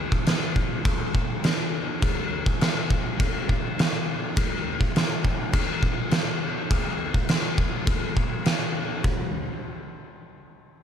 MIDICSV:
0, 0, Header, 1, 2, 480
1, 0, Start_track
1, 0, Tempo, 585938
1, 1653, Time_signature, 4, 2, 24, 8
1, 8873, End_track
2, 0, Start_track
2, 0, Title_t, "Drums"
2, 98, Note_on_c, 9, 36, 86
2, 180, Note_off_c, 9, 36, 0
2, 217, Note_on_c, 9, 49, 67
2, 225, Note_on_c, 9, 38, 115
2, 299, Note_off_c, 9, 49, 0
2, 307, Note_off_c, 9, 38, 0
2, 458, Note_on_c, 9, 36, 85
2, 540, Note_off_c, 9, 36, 0
2, 697, Note_on_c, 9, 49, 65
2, 698, Note_on_c, 9, 36, 127
2, 779, Note_off_c, 9, 49, 0
2, 780, Note_off_c, 9, 36, 0
2, 939, Note_on_c, 9, 36, 80
2, 1021, Note_off_c, 9, 36, 0
2, 1178, Note_on_c, 9, 49, 65
2, 1186, Note_on_c, 9, 38, 104
2, 1260, Note_off_c, 9, 49, 0
2, 1268, Note_off_c, 9, 38, 0
2, 1657, Note_on_c, 9, 49, 64
2, 1658, Note_on_c, 9, 36, 114
2, 1738, Note_off_c, 9, 49, 0
2, 1740, Note_off_c, 9, 36, 0
2, 2018, Note_on_c, 9, 36, 95
2, 2100, Note_off_c, 9, 36, 0
2, 2140, Note_on_c, 9, 49, 68
2, 2148, Note_on_c, 9, 38, 123
2, 2222, Note_off_c, 9, 49, 0
2, 2230, Note_off_c, 9, 38, 0
2, 2380, Note_on_c, 9, 36, 92
2, 2462, Note_off_c, 9, 36, 0
2, 2619, Note_on_c, 9, 49, 62
2, 2621, Note_on_c, 9, 36, 120
2, 2701, Note_off_c, 9, 49, 0
2, 2702, Note_off_c, 9, 36, 0
2, 2862, Note_on_c, 9, 36, 74
2, 2944, Note_off_c, 9, 36, 0
2, 3106, Note_on_c, 9, 49, 56
2, 3113, Note_on_c, 9, 38, 110
2, 3188, Note_off_c, 9, 49, 0
2, 3195, Note_off_c, 9, 38, 0
2, 3580, Note_on_c, 9, 36, 120
2, 3586, Note_on_c, 9, 49, 59
2, 3662, Note_off_c, 9, 36, 0
2, 3668, Note_off_c, 9, 49, 0
2, 3937, Note_on_c, 9, 36, 91
2, 4019, Note_off_c, 9, 36, 0
2, 4062, Note_on_c, 9, 49, 65
2, 4070, Note_on_c, 9, 38, 114
2, 4144, Note_off_c, 9, 49, 0
2, 4151, Note_off_c, 9, 38, 0
2, 4297, Note_on_c, 9, 36, 81
2, 4379, Note_off_c, 9, 36, 0
2, 4532, Note_on_c, 9, 49, 72
2, 4535, Note_on_c, 9, 36, 119
2, 4614, Note_off_c, 9, 49, 0
2, 4617, Note_off_c, 9, 36, 0
2, 4773, Note_on_c, 9, 36, 80
2, 4855, Note_off_c, 9, 36, 0
2, 5008, Note_on_c, 9, 49, 61
2, 5016, Note_on_c, 9, 38, 107
2, 5090, Note_off_c, 9, 49, 0
2, 5098, Note_off_c, 9, 38, 0
2, 5495, Note_on_c, 9, 36, 107
2, 5498, Note_on_c, 9, 49, 62
2, 5577, Note_off_c, 9, 36, 0
2, 5580, Note_off_c, 9, 49, 0
2, 5852, Note_on_c, 9, 36, 93
2, 5934, Note_off_c, 9, 36, 0
2, 5970, Note_on_c, 9, 49, 72
2, 5977, Note_on_c, 9, 38, 127
2, 6052, Note_off_c, 9, 49, 0
2, 6059, Note_off_c, 9, 38, 0
2, 6210, Note_on_c, 9, 36, 97
2, 6292, Note_off_c, 9, 36, 0
2, 6447, Note_on_c, 9, 49, 61
2, 6449, Note_on_c, 9, 36, 119
2, 6528, Note_off_c, 9, 49, 0
2, 6531, Note_off_c, 9, 36, 0
2, 6690, Note_on_c, 9, 36, 77
2, 6772, Note_off_c, 9, 36, 0
2, 6927, Note_on_c, 9, 49, 63
2, 6934, Note_on_c, 9, 38, 105
2, 7009, Note_off_c, 9, 49, 0
2, 7016, Note_off_c, 9, 38, 0
2, 7409, Note_on_c, 9, 36, 101
2, 7491, Note_off_c, 9, 36, 0
2, 8873, End_track
0, 0, End_of_file